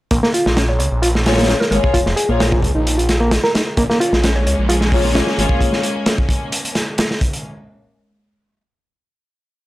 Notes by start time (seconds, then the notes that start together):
0.11 A#1 A#3, kick, closed hi-hat
0.23 A#3, snare
0.34 F4, closed hi-hat
0.46 A#1, snare
0.57 C#4, snare, closed hi-hat
0.69 C#5
0.79 C#2 C#5, closed hi-hat
0.91 A#1
1.02 F4, closed hi-hat
1.15 snare
1.26 A#3 F4 G#4 C#5, snare, closed hi-hat
1.32 snare, closed hi-hat
1.37 A#3, snare, closed hi-hat
1.43 snare, closed hi-hat
1.48 C#4, snare, closed hi-hat
1.60 A#4, snare
1.71 G#1 G#3 A#3 F4 G#4 A#4 C#5, closed hi-hat
1.84 kick
1.94 F1 F4, kick, closed hi-hat
2.06 F1, snare
2.16 G#4, closed hi-hat
2.29 A#1 A#3 F4 G#4 C#5
2.40 snare, closed hi-hat
2.52 F4, kick
2.62 C#2, kick, closed hi-hat
2.75 A#1 D#4
2.87 closed hi-hat
2.98 F4, closed hi-hat
3.09 snare, closed hi-hat
3.21 A#3
3.31 snare, closed hi-hat
3.44 A#4, snare
3.55 D#4, snare, closed hi-hat
3.77 A#1 G#3 A#3 C#4, kick, closed hi-hat
3.90 A#3, snare
4.00 F4, closed hi-hat
4.13 A#1, snare
4.23 C#4, snare, closed hi-hat
4.36 C#5
4.47 C#2 C#5, closed hi-hat
4.59 A#1
4.69 F4 G#4, closed hi-hat
4.81 snare
4.92 A#3 F4 G#4 C#5, kick, open hi-hat
5.05 A#3
5.15 C#4, snare, closed hi-hat
5.27 snare
5.38 G#1 G#3 A#3 F4 G#4 C#5, closed hi-hat
5.49 kick
5.61 kick, closed hi-hat
5.73 snare
5.83 closed hi-hat
6.06 snare, closed hi-hat
6.18 kick
6.29 kick, closed hi-hat
6.52 closed hi-hat
6.65 closed hi-hat
6.75 snare, closed hi-hat
6.98 snare, closed hi-hat
7.11 snare
7.21 kick, closed hi-hat
7.33 closed hi-hat